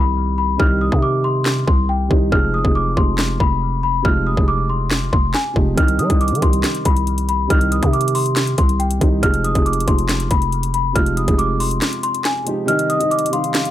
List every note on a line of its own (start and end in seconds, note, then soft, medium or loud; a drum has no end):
0.00 0.57 C2 loud
0.00 0.57 C3 loud
0.00 0.58 D#3 medium
0.00 0.59 G3 medium
0.00 0.61 D#4 medium
0.00 0.62 G4 loud
0.00 0.35 B5 medium
0.38 0.58 B5 medium
0.57 0.91 C2 loud
0.57 0.81 C3 medium
0.57 0.81 D#3 medium
0.57 0.82 G3 medium
0.57 0.82 D#4 medium
0.57 0.80 F6 loud
0.57 kick loud
0.62 0.83 G4 loud
0.81 1.01 D#6 medium
0.89 1.50 C3 medium
0.89 1.65 C3 loud
0.89 1.51 D#3 medium
0.89 1.51 G3 medium
0.89 1.52 D#4 medium
0.89 kick medium
0.94 1.52 G4 medium
1.02 1.23 D6 medium
1.24 1.65 C6 medium
1.46 snare loud
1.46 clap medium
1.67 2.09 C2 loud
1.67 1.87 C6 medium
1.67 kick loud
1.89 2.09 G5 medium
2.08 2.31 C2 loud
2.08 2.24 C3 medium
2.08 2.25 D#3 medium
2.08 2.26 G3 medium
2.08 2.26 D#4 medium
2.08 kick medium
2.13 2.27 G4 medium
2.30 2.63 F1 loud
2.30 2.53 C3 medium
2.30 2.54 F3 medium
2.30 2.55 G#3 medium
2.30 2.55 D#4 medium
2.30 2.52 F6 loud
2.30 kick loud
2.35 2.56 G#4 loud
2.54 2.74 D#6 medium
2.62 2.96 F1 loud
2.62 2.86 C3 medium
2.62 2.86 F3 medium
2.62 2.87 G#3 medium
2.62 2.88 D#4 medium
2.62 kick medium
2.67 2.88 G#4 medium
2.75 2.96 D6 medium
2.95 3.38 F1 loud
2.95 3.55 C3 medium
2.95 3.56 F3 medium
2.95 3.56 G#3 medium
2.95 3.57 D#4 medium
2.95 3.38 C6 medium
2.95 kick loud
3.00 3.58 G#4 medium
3.18 snare loud
3.18 clap medium
3.40 4.02 F1 loud
3.40 3.81 B5 medium
3.40 kick loud
3.83 4.03 B5 medium
4.02 4.36 F1 loud
4.02 4.26 C3 medium
4.02 4.27 F3 medium
4.02 4.27 G#3 medium
4.02 4.28 D#4 medium
4.02 4.25 F6 loud
4.02 kick loud
4.07 4.28 F4 loud
4.27 4.47 D#6 medium
4.35 5.10 F1 loud
4.35 4.95 C3 medium
4.35 4.96 F3 medium
4.35 4.97 G#3 medium
4.35 4.97 D#4 medium
4.35 kick medium
4.39 4.98 G#4 medium
4.48 4.68 D6 medium
4.70 5.10 C6 medium
4.91 snare loud
4.91 clap medium
5.13 5.34 F1 loud
5.13 5.33 C6 medium
5.13 kick loud
5.34 5.54 G#5 medium
5.34 snare loud
5.34 clap medium
5.54 5.77 F1 loud
5.54 5.70 C3 medium
5.54 5.70 F3 medium
5.54 5.71 G#3 medium
5.54 5.71 D#4 medium
5.54 kick medium
5.58 5.72 G4 medium
5.75 6.01 C2 loud
5.75 5.98 C3 loud
5.75 5.99 D#3 medium
5.75 6.00 G3 medium
5.75 6.00 D#4 medium
5.75 5.98 F6 loud
5.75 kick loud
5.75 closed hi-hat medium
5.79 6.01 G4 loud
5.88 closed hi-hat medium
5.99 6.09 G3 loud
5.99 6.19 D#6 medium
5.99 closed hi-hat medium
6.07 6.33 C2 loud
6.07 6.31 C3 medium
6.07 6.31 D#3 medium
6.07 6.32 G3 medium
6.07 6.33 D#4 medium
6.07 kick loud
6.07 closed hi-hat medium
6.12 6.33 G4 medium
6.21 6.41 D6 medium
6.21 closed hi-hat soft
6.28 6.42 D#3 loud
6.28 closed hi-hat medium
6.35 closed hi-hat medium
6.39 6.63 C2 loud
6.39 7.00 C3 medium
6.39 7.01 D#3 medium
6.39 7.01 G3 medium
6.39 7.02 D#4 medium
6.39 6.83 C6 medium
6.39 kick loud
6.39 closed hi-hat medium
6.44 7.03 G4 medium
6.53 closed hi-hat medium
6.64 snare loud
6.64 clap medium
6.64 closed hi-hat medium
6.75 closed hi-hat medium
6.85 7.48 C2 loud
6.85 7.26 B5 medium
6.85 kick loud
6.85 closed hi-hat medium
6.97 closed hi-hat medium
7.07 closed hi-hat medium
7.18 closed hi-hat medium
7.29 7.49 B5 medium
7.29 closed hi-hat medium
7.47 7.81 C2 loud
7.47 7.71 C3 medium
7.47 7.72 D#3 medium
7.47 7.72 G3 medium
7.47 7.73 D#4 medium
7.47 7.70 F6 loud
7.47 kick loud
7.47 closed hi-hat medium
7.52 7.74 G4 loud
7.61 closed hi-hat medium
7.72 7.92 D#6 medium
7.72 closed hi-hat medium
7.80 8.41 C3 medium
7.80 8.55 C3 loud
7.80 8.41 D#3 medium
7.80 8.42 G3 medium
7.80 8.42 D#4 medium
7.80 kick medium
7.80 closed hi-hat medium
7.85 8.43 G4 medium
7.93 8.13 D6 medium
7.93 closed hi-hat soft
8.01 closed hi-hat medium
8.08 closed hi-hat medium
8.15 8.56 C6 medium
8.15 open hi-hat medium
8.26 closed hi-hat medium
8.36 snare loud
8.36 clap medium
8.36 closed hi-hat medium
8.47 closed hi-hat medium
8.58 9.00 C2 loud
8.58 8.78 C6 medium
8.58 kick loud
8.58 closed hi-hat medium
8.69 closed hi-hat medium
8.80 9.00 G5 medium
8.80 closed hi-hat soft
8.91 closed hi-hat medium
8.99 9.22 C2 loud
8.99 9.15 C3 medium
8.99 9.16 D#3 medium
8.99 9.16 G3 medium
8.99 9.17 D#4 medium
8.99 kick loud
8.99 closed hi-hat medium
9.04 9.17 G4 medium
9.21 9.54 F1 loud
9.21 9.44 C3 medium
9.21 9.45 F3 medium
9.21 9.45 G#3 medium
9.21 9.46 D#4 medium
9.21 9.43 F6 loud
9.21 kick loud
9.21 closed hi-hat medium
9.25 9.46 G#4 loud
9.34 closed hi-hat medium
9.44 9.65 D#6 medium
9.44 closed hi-hat medium
9.53 9.86 F1 loud
9.53 9.76 C3 medium
9.53 9.77 F3 medium
9.53 9.78 G#3 medium
9.53 9.78 D#4 medium
9.53 kick medium
9.53 closed hi-hat medium
9.58 9.79 G#4 medium
9.66 9.86 D6 medium
9.66 closed hi-hat soft
9.73 closed hi-hat medium
9.80 closed hi-hat medium
9.85 10.29 F1 loud
9.85 10.46 C3 medium
9.85 10.46 F3 medium
9.85 10.47 G#3 medium
9.85 10.48 D#4 medium
9.85 10.28 C6 medium
9.85 kick loud
9.85 closed hi-hat medium
9.90 10.48 G#4 medium
9.99 closed hi-hat medium
10.09 snare loud
10.09 clap medium
10.09 closed hi-hat medium
10.20 closed hi-hat medium
10.31 10.93 F1 loud
10.31 10.71 B5 medium
10.31 kick loud
10.31 closed hi-hat medium
10.42 closed hi-hat medium
10.52 closed hi-hat medium
10.63 closed hi-hat medium
10.74 10.94 B5 medium
10.74 closed hi-hat medium
10.93 11.27 F1 loud
10.93 11.17 C3 medium
10.93 11.17 F3 medium
10.93 11.18 G#3 medium
10.93 11.18 D#4 medium
10.93 11.16 F6 loud
10.93 kick loud
10.93 closed hi-hat medium
10.98 11.19 F4 loud
11.06 closed hi-hat medium
11.17 11.37 D#6 medium
11.17 closed hi-hat medium
11.25 11.80 F1 loud
11.25 11.86 C3 medium
11.25 11.87 F3 medium
11.25 11.87 G#3 medium
11.25 11.88 D#4 medium
11.25 kick medium
11.25 closed hi-hat medium
11.30 11.88 G#4 medium
11.39 11.59 D6 medium
11.39 closed hi-hat medium
11.60 12.01 C6 medium
11.60 open hi-hat medium
11.71 closed hi-hat medium
11.82 snare loud
11.82 clap medium
11.82 closed hi-hat medium
11.93 closed hi-hat medium
12.03 12.24 C6 medium
12.03 closed hi-hat medium
12.15 closed hi-hat medium
12.25 12.45 G#5 medium
12.25 snare medium
12.25 clap medium
12.25 closed hi-hat medium
12.44 12.60 C3 medium
12.44 12.61 F3 medium
12.44 12.61 G#3 medium
12.44 12.62 D#4 medium
12.44 closed hi-hat medium
12.49 12.63 G4 medium
12.66 12.89 C3 loud
12.66 12.90 D#3 medium
12.66 12.90 G3 medium
12.66 12.91 D#4 medium
12.66 13.29 D#5 loud
12.66 12.88 F6 loud
12.66 closed hi-hat medium
12.70 12.92 G4 loud
12.79 closed hi-hat medium
12.90 13.10 D#6 medium
12.90 closed hi-hat medium
12.98 13.22 C3 medium
12.98 13.22 D#3 medium
12.98 13.23 G3 medium
12.98 13.23 D#4 medium
12.98 closed hi-hat medium
13.03 13.24 G4 medium
13.11 13.31 D6 medium
13.11 closed hi-hat soft
13.19 closed hi-hat medium
13.26 closed hi-hat medium
13.30 13.71 C3 medium
13.30 13.71 D#3 medium
13.30 13.71 G3 medium
13.30 13.71 D#4 medium
13.30 13.71 F5 loud
13.30 13.71 C6 medium
13.30 closed hi-hat medium
13.35 13.71 G4 medium
13.44 closed hi-hat medium
13.54 snare loud
13.54 clap medium
13.54 closed hi-hat medium
13.65 closed hi-hat medium